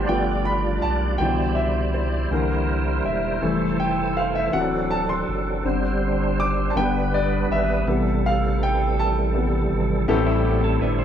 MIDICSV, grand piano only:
0, 0, Header, 1, 2, 480
1, 0, Start_track
1, 0, Tempo, 739827
1, 779, Time_signature, 6, 3, 24, 8
1, 7167, End_track
2, 0, Start_track
2, 0, Title_t, "Grand piano"
2, 0, Program_c, 0, 0
2, 0, Control_c, 0, 64, 127
2, 0, Note_on_c, 0, 53, 50
2, 0, Note_on_c, 0, 57, 45
2, 0, Note_on_c, 0, 60, 56
2, 52, Note_off_c, 0, 53, 0
2, 52, Note_on_c, 0, 53, 47
2, 55, Note_off_c, 0, 57, 0
2, 55, Note_on_c, 0, 57, 48
2, 57, Note_on_c, 0, 79, 82
2, 59, Note_on_c, 0, 59, 56
2, 67, Control_c, 0, 64, 0
2, 73, Note_off_c, 0, 60, 0
2, 169, Control_c, 0, 64, 127
2, 294, Note_on_c, 0, 83, 84
2, 305, Note_off_c, 0, 79, 0
2, 520, Note_off_c, 0, 83, 0
2, 533, Note_on_c, 0, 81, 84
2, 750, Note_off_c, 0, 53, 0
2, 752, Note_off_c, 0, 57, 0
2, 754, Note_off_c, 0, 59, 0
2, 759, Note_off_c, 0, 81, 0
2, 767, Note_on_c, 0, 79, 83
2, 773, Note_on_c, 0, 50, 46
2, 779, Note_on_c, 0, 47, 51
2, 779, Note_on_c, 0, 52, 44
2, 786, Control_c, 0, 64, 0
2, 899, Control_c, 0, 64, 127
2, 1008, Note_on_c, 0, 76, 72
2, 1021, Note_off_c, 0, 79, 0
2, 1237, Note_off_c, 0, 76, 0
2, 1260, Note_on_c, 0, 72, 62
2, 1471, Note_off_c, 0, 50, 0
2, 1474, Note_off_c, 0, 47, 0
2, 1474, Note_off_c, 0, 52, 0
2, 1484, Note_off_c, 0, 72, 0
2, 1497, Note_on_c, 0, 50, 50
2, 1502, Note_on_c, 0, 52, 46
2, 1507, Note_on_c, 0, 58, 55
2, 1510, Control_c, 0, 64, 0
2, 1609, Control_c, 0, 64, 127
2, 1819, Note_off_c, 0, 50, 0
2, 1821, Note_off_c, 0, 52, 0
2, 1824, Note_off_c, 0, 58, 0
2, 1982, Note_on_c, 0, 76, 71
2, 2218, Note_on_c, 0, 52, 51
2, 2223, Note_on_c, 0, 55, 47
2, 2225, Note_on_c, 0, 57, 52
2, 2229, Control_c, 0, 64, 0
2, 2354, Control_c, 0, 64, 127
2, 2436, Note_off_c, 0, 76, 0
2, 2464, Note_on_c, 0, 79, 78
2, 2539, Note_off_c, 0, 52, 0
2, 2542, Note_off_c, 0, 55, 0
2, 2543, Note_off_c, 0, 57, 0
2, 2704, Note_on_c, 0, 77, 76
2, 2710, Note_off_c, 0, 79, 0
2, 2824, Note_on_c, 0, 76, 79
2, 2827, Note_off_c, 0, 77, 0
2, 2932, Note_on_c, 0, 52, 54
2, 2939, Note_on_c, 0, 54, 50
2, 2940, Note_on_c, 0, 78, 87
2, 2941, Note_on_c, 0, 60, 57
2, 2947, Note_off_c, 0, 76, 0
2, 2951, Control_c, 0, 64, 0
2, 3069, Control_c, 0, 64, 127
2, 3183, Note_on_c, 0, 81, 80
2, 3188, Note_off_c, 0, 78, 0
2, 3304, Note_on_c, 0, 84, 81
2, 3306, Note_off_c, 0, 81, 0
2, 3527, Note_off_c, 0, 84, 0
2, 3631, Note_off_c, 0, 52, 0
2, 3635, Note_off_c, 0, 54, 0
2, 3636, Note_off_c, 0, 60, 0
2, 3660, Note_on_c, 0, 50, 47
2, 3667, Note_on_c, 0, 55, 46
2, 3669, Note_on_c, 0, 60, 52
2, 3672, Control_c, 0, 64, 0
2, 3773, Control_c, 0, 64, 127
2, 4151, Note_on_c, 0, 86, 92
2, 4347, Note_off_c, 0, 86, 0
2, 4349, Note_on_c, 0, 81, 67
2, 4355, Note_off_c, 0, 50, 0
2, 4358, Note_off_c, 0, 55, 0
2, 4359, Note_off_c, 0, 60, 0
2, 4381, Note_on_c, 0, 50, 52
2, 4385, Note_on_c, 0, 55, 50
2, 4388, Note_off_c, 0, 81, 0
2, 4388, Note_on_c, 0, 59, 62
2, 4391, Control_c, 0, 64, 0
2, 4392, Note_on_c, 0, 79, 91
2, 4502, Control_c, 0, 64, 127
2, 4610, Note_off_c, 0, 79, 0
2, 4634, Note_on_c, 0, 74, 78
2, 4851, Note_off_c, 0, 74, 0
2, 4878, Note_on_c, 0, 76, 82
2, 5075, Note_off_c, 0, 50, 0
2, 5077, Note_off_c, 0, 55, 0
2, 5078, Note_off_c, 0, 59, 0
2, 5103, Note_on_c, 0, 48, 54
2, 5104, Note_on_c, 0, 55, 45
2, 5109, Control_c, 0, 64, 0
2, 5109, Note_on_c, 0, 59, 59
2, 5216, Control_c, 0, 64, 127
2, 5360, Note_on_c, 0, 77, 83
2, 5364, Note_off_c, 0, 76, 0
2, 5597, Note_off_c, 0, 77, 0
2, 5600, Note_on_c, 0, 79, 85
2, 5836, Note_on_c, 0, 81, 81
2, 5837, Note_off_c, 0, 79, 0
2, 6050, Note_off_c, 0, 48, 0
2, 6056, Note_off_c, 0, 55, 0
2, 6056, Note_off_c, 0, 59, 0
2, 6060, Note_on_c, 0, 48, 45
2, 6065, Note_on_c, 0, 55, 42
2, 6066, Note_on_c, 0, 59, 49
2, 6276, Note_off_c, 0, 48, 0
2, 6279, Note_off_c, 0, 55, 0
2, 6279, Note_off_c, 0, 59, 0
2, 6521, Note_off_c, 0, 81, 0
2, 6540, Note_on_c, 0, 59, 68
2, 6540, Note_on_c, 0, 64, 81
2, 6541, Note_on_c, 0, 45, 69
2, 6544, Note_on_c, 0, 67, 80
2, 6545, Note_on_c, 0, 69, 88
2, 6546, Control_c, 0, 64, 0
2, 6581, Note_on_c, 0, 60, 81
2, 6582, Note_off_c, 0, 59, 0
2, 6660, Control_c, 0, 64, 127
2, 7039, Note_off_c, 0, 64, 0
2, 7041, Note_off_c, 0, 67, 0
2, 7041, Note_off_c, 0, 69, 0
2, 7059, Note_off_c, 0, 60, 0
2, 7167, Note_off_c, 0, 45, 0
2, 7167, End_track
0, 0, End_of_file